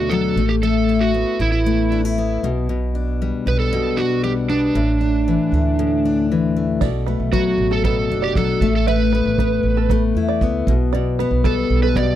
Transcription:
Already playing: upright bass D2, steel-string acoustic guitar B2 A3 D4, electric slide guitar F#4
0.10 steel-string acoustic guitar F#3, electric slide guitar A4
0.36 upright bass A1, steel-string acoustic guitar A3
0.49 electric slide guitar G4
0.63 steel-string acoustic guitar A3, electric slide guitar A4
0.89 steel-string acoustic guitar E4
1.01 electric slide guitar F#4
1.14 steel-string acoustic guitar B3
1.39 upright bass A1, steel-string acoustic guitar B3, electric slide guitar E4
1.52 electric slide guitar E4
1.66 steel-string acoustic guitar A3
1.92 steel-string acoustic guitar D4
2.05 steel-string acoustic guitar E4
2.18 steel-string acoustic guitar B3
2.43 upright bass B1, steel-string acoustic guitar B2
2.69 steel-string acoustic guitar B2
2.95 steel-string acoustic guitar D4
3.22 steel-string acoustic guitar G3
3.46 upright bass B1, steel-string acoustic guitar B3, electric slide guitar B4
3.59 electric slide guitar A4
3.73 steel-string acoustic guitar B2
3.97 steel-string acoustic guitar D4, electric slide guitar F#4
4.24 steel-string acoustic guitar G3, electric slide guitar G4
4.49 steel-string acoustic guitar B3, electric slide guitar D4
4.75 upright bass A1, steel-string acoustic guitar A2
5.01 steel-string acoustic guitar D4
5.28 steel-string acoustic guitar E3
5.52 upright bass D2, steel-string acoustic guitar A3
5.79 steel-string acoustic guitar A2
6.05 steel-string acoustic guitar D4
6.32 steel-string acoustic guitar E3
6.56 steel-string acoustic guitar A3
6.81 upright bass B1, steel-string acoustic guitar B2, five-string banjo D5, kick, crash
7.06 steel-string acoustic guitar A3, five-string banjo B4
7.20 upright bass B1
7.32 steel-string acoustic guitar F#3, electric slide guitar F#4, five-string banjo B4, kick
7.58 upright bass A1
7.71 five-string banjo A4, electric slide guitar A4
7.84 steel-string acoustic guitar B2, electric slide guitar A4, five-string banjo B4, kick
8.10 upright bass F#1, steel-string acoustic guitar D4
8.22 electric slide guitar G4, five-string banjo D5
8.35 upright bass B1, steel-string acoustic guitar F#3, electric slide guitar A4, kick
8.61 upright bass A1, steel-string acoustic guitar A3, kick
8.76 electric slide guitar A4
8.87 steel-string acoustic guitar A3, electric slide guitar B4, five-string banjo E5
9.12 steel-string acoustic guitar B3, five-string banjo B4
9.25 upright bass A1
9.38 steel-string acoustic guitar B3, five-string banjo B4, kick
9.63 upright bass A1
9.77 five-string banjo A4
9.90 steel-string acoustic guitar A3, five-string banjo B4, kick
10.15 upright bass E2, steel-string acoustic guitar E4
10.29 five-string banjo D5
10.41 upright bass C#2, steel-string acoustic guitar B3, kick
10.67 upright bass B1, steel-string acoustic guitar B2, kick
10.93 steel-string acoustic guitar B2, five-string banjo D5
11.19 steel-string acoustic guitar B3, five-string banjo B4
11.31 upright bass B1
11.44 steel-string acoustic guitar G3, electric slide guitar A4, five-string banjo B4, kick
11.70 upright bass B1
11.83 five-string banjo A4, electric slide guitar B4
11.96 steel-string acoustic guitar B2, five-string banjo B4, electric slide guitar D5, kick

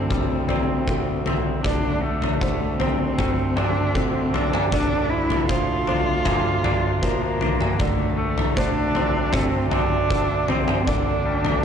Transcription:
Already playing: fingered electric bass D2, clean electric guitar D3 C4, cello C4, felt piano C5
0.10 clean electric guitar G3, cello C4, kick, floor tom
0.48 clean electric guitar C4, felt piano D5, floor tom
0.88 clean electric guitar D3, felt piano A4, kick
1.26 clean electric guitar C4, floor tom
1.62 fingered electric bass D2, clean electric guitar D3, cello D4, felt piano D5, kick, floor tom
2.02 cello A3, clean electric guitar A3
2.22 floor tom
2.41 clean electric guitar D3, felt piano C5, kick
2.79 cello C4, clean electric guitar C4, felt piano C5, floor tom
3.18 clean electric guitar A3, kick, floor tom, mid tom
3.56 clean electric guitar C4, cello D4, felt piano D5, floor tom, mid tom
3.95 clean electric guitar D3, cello C4, felt piano A4, kick
4.34 clean electric guitar C4, cello D4, floor tom
4.53 mid tom
4.71 fingered electric bass D2, clean electric guitar D3, cello D4, felt piano D5, kick, floor tom
5.10 clean electric guitar F3, cello E4
5.30 floor tom
5.49 clean electric guitar F3, cello F4, felt piano C5, kick
5.87 clean electric guitar D4, felt piano C5, floor tom
6.25 clean electric guitar A#3, kick, floor tom, mid tom
6.64 clean electric guitar D4, felt piano D5, floor tom, mid tom
7.02 clean electric guitar F3, cello A#3, felt piano A#4, kick
7.41 clean electric guitar D4, floor tom
7.61 mid tom
7.80 fingered electric bass D2, clean electric guitar D3, cello A3, felt piano D5, kick, floor tom
8.17 clean electric guitar A3
8.38 floor tom
8.57 clean electric guitar D3, cello D4, felt piano C5, kick
8.95 clean electric guitar C4, felt piano C5, floor tom
9.33 clean electric guitar A3, cello C4, kick, floor tom, mid tom
9.71 clean electric guitar C4, cello D4, felt piano E5, floor tom, mid tom
10.10 clean electric guitar D3, felt piano A4, kick
10.48 cello C4, clean electric guitar C4, floor tom
10.68 mid tom
10.86 fingered electric bass D2, clean electric guitar D3, cello D4, felt piano D5, kick, floor tom
11.26 clean electric guitar G3
11.45 floor tom

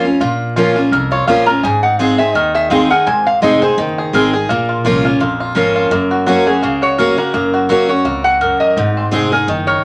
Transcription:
Already playing: steel-string acoustic guitar F2
0.04 steel-string acoustic guitar C#4 F4
0.20 upright bass A#1, steel-string acoustic guitar A#2, five-string banjo F4
0.56 steel-string acoustic guitar F3 A#3 C#4 F4, five-string banjo F4
0.76 five-string banjo A#3, steel-string acoustic guitar C#4 F4
0.91 upright bass C2, steel-string acoustic guitar F2, five-string banjo A#4
1.12 five-string banjo F4, resonator guitar played with a steel bar C#5
1.27 upright bass A#1, steel-string acoustic guitar F3 A#3 C#4 F4, five-string banjo A#3, resonator guitar played with a steel bar F5
1.46 steel-string acoustic guitar F4, five-string banjo A#4, resonator guitar played with a steel bar A#5
1.50 steel-string acoustic guitar C#4
1.63 upright bass G#1, steel-string acoustic guitar G#2, five-string banjo G#4, resonator guitar played with a steel bar G#5
1.83 five-string banjo D#4, resonator guitar played with a steel bar F#5
1.99 steel-string acoustic guitar G#3 C4 D#4 G#4, five-string banjo G#4, resonator guitar played with a steel bar F5
2.18 five-string banjo C4, steel-string acoustic guitar D#4 G#4, resonator guitar played with a steel bar E5
2.35 upright bass D#2, steel-string acoustic guitar D#3, five-string banjo A#4, resonator guitar played with a steel bar D#5
2.55 five-string banjo G#4, resonator guitar played with a steel bar E5
2.70 steel-string acoustic guitar G#3 C4 D#4 G#4, five-string banjo C4, resonator guitar played with a steel bar F5
2.90 steel-string acoustic guitar D#4 G#4, five-string banjo A#4, resonator guitar played with a steel bar F#5
3.06 upright bass G#1, steel-string acoustic guitar G#2, five-string banjo C4, resonator guitar played with a steel bar G#5
3.26 resonator guitar played with a steel bar F5
3.42 upright bass F1, steel-string acoustic guitar G#3 C4 D#4 G#4, five-string banjo G#4, resonator guitar played with a steel bar D#5
3.62 five-string banjo C4, steel-string acoustic guitar D#4 G#4, resonator guitar played with a steel bar C5
3.77 upright bass F#1, steel-string acoustic guitar D#3, five-string banjo D#4
3.98 five-string banjo G#4
4.13 upright bass G#1, steel-string acoustic guitar G#3 C4 D#4 G#4, five-string banjo A#4
4.33 steel-string acoustic guitar D#4 G#4, five-string banjo G#4
4.49 upright bass A#1, steel-string acoustic guitar A#2, five-string banjo A#3
4.69 five-string banjo F4
4.84 upright bass C2, steel-string acoustic guitar F3 A#3 C#4 F4, five-string banjo F4
5.04 five-string banjo A#3, steel-string acoustic guitar C#4 F4
5.20 upright bass A#1, steel-string acoustic guitar F2, five-string banjo F4
5.40 five-string banjo F4
5.55 upright bass G#1, steel-string acoustic guitar F3 A#3 C#4 F4, five-string banjo A#4
5.76 five-string banjo F4
5.91 upright bass F#1, steel-string acoustic guitar F#2, five-string banjo A#3
6.11 five-string banjo F#4
6.26 steel-string acoustic guitar F#3 A#3 C#4 F#4, five-string banjo F#4
6.46 steel-string acoustic guitar C#4 F#4, five-string banjo F#4, resonator guitar played with a steel bar G#4
6.62 upright bass C#2, steel-string acoustic guitar C#3, five-string banjo A#3
6.82 five-string banjo F#4, resonator guitar played with a steel bar C#5
6.98 steel-string acoustic guitar F#3 A#3 C#4 F#4, five-string banjo A#4
7.18 five-string banjo A#3, steel-string acoustic guitar C#4 F#4, resonator guitar played with a steel bar A#4
7.34 upright bass F#1, steel-string acoustic guitar F#2, five-string banjo A#3
7.54 five-string banjo F#4
7.69 steel-string acoustic guitar F#3 A#3 C#4 F#4, five-string banjo F#4
7.89 steel-string acoustic guitar C#4 F#4, five-string banjo F#4, resonator guitar played with a steel bar C#5
8.05 upright bass C#2, steel-string acoustic guitar F2, five-string banjo A#3
8.24 five-string banjo F#4, resonator guitar played with a steel bar F#5
8.41 steel-string acoustic guitar F#2, five-string banjo A#4
8.60 five-string banjo A#3, resonator guitar played with a steel bar D#5
8.76 upright bass G#1, steel-string acoustic guitar G#2, five-string banjo D#4
8.97 five-string banjo C4
9.11 upright bass F1, steel-string acoustic guitar G#3 C4 D#4 G#4, five-string banjo G#4
9.32 steel-string acoustic guitar D#4 G#4, five-string banjo A#4
9.47 upright bass F#1, steel-string acoustic guitar D#3, five-string banjo D#4
9.67 five-string banjo A#4, resonator guitar played with a steel bar C#5

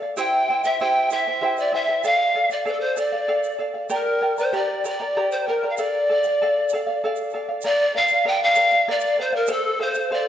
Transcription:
0.02 charango D5 F5
0.17 charango E4 G4 C5 E5 G5, pan flute G5, shaker
0.49 charango E4 C5 E5 G5
0.64 charango E4 C5 G5, pan flute E5, shaker
0.79 charango E4 G4 C5 E5 G5, pan flute G5, shaker
1.10 charango E4 C5 E5 G5, pan flute E5, shaker
1.27 charango E4 C5 G5
1.41 charango E4 G4 C5 E5 G5
1.58 pan flute D5, shaker
1.73 charango E4 C5 E5 G5, pan flute E5
1.88 charango E4 C5 G5
2.04 charango A4 D5 F5, pan flute F5, shaker
2.35 charango A4 D5 F5
2.50 pan flute D5, charango D5 F5, shaker
2.65 charango A4 D5 F5, pan flute C5, shaker
2.72 pan flute A4
2.80 pan flute C5
2.97 charango A4 D5 F5, pan flute D5, shaker
3.01 pan flute D5
3.12 charango D5 F5
3.28 charango A4 D5 F5
3.44 shaker
3.59 charango A4 D5 F5
3.74 charango D5 F5
3.90 charango G4 A#4 D5 G5 A#5, pan flute A#4, shaker
3.94 pan flute A#4
4.21 charango A#4 D5 G5 A#5
4.38 charango A#4 D5 A#5, pan flute C5, shaker
4.53 charango G4 A#4 D5 G5 A#5, pan flute D5, shaker
4.84 charango A#4 D5 G5 A#5, pan flute D5, shaker
5.00 charango A#4 D5 A#5
5.17 charango G4 A#4 D5 G5 A#5
5.32 pan flute C5, shaker
5.47 pan flute A#4, charango A#4 D5 G5 A#5
5.63 charango A#4 D5 A#5
5.70 pan flute F5
5.77 charango A4 D5 F5, pan flute D5, shaker
5.82 pan flute D5
6.09 charango A4 D5 F5
6.24 charango D5 F5, shaker
6.42 charango A4 D5 F5
6.69 charango A4, shaker
6.74 charango D5 F5
6.87 charango D5 F5
7.04 charango A4 D5 F5
7.16 shaker
7.30 charango A4, shaker
7.34 charango D5 F5
7.49 charango D5 F5
7.62 charango A#4 D5 F5, shaker
7.66 pan flute D5
7.95 charango A#4 D5 F5, pan flute F5
8.08 charango F5, shaker
8.12 charango D5
8.25 charango A#4 D5 F5, pan flute G5
8.43 pan flute F5
8.55 charango A#4 D5 F5, shaker
8.70 charango D5 F5, shaker
8.88 charango A#4 D5 F5, pan flute D5
9.00 shaker
9.18 charango A#4 D5 F5, pan flute C5
9.33 pan flute A#4, charango D5 F5
9.47 charango A4 C5 F5, shaker
9.51 pan flute A4
9.80 charango A4 C5 F5, pan flute C5
9.85 pan flute C5
9.94 charango C5 F5, shaker
10.11 charango A4 C5 F5, pan flute D5
10.16 pan flute D5

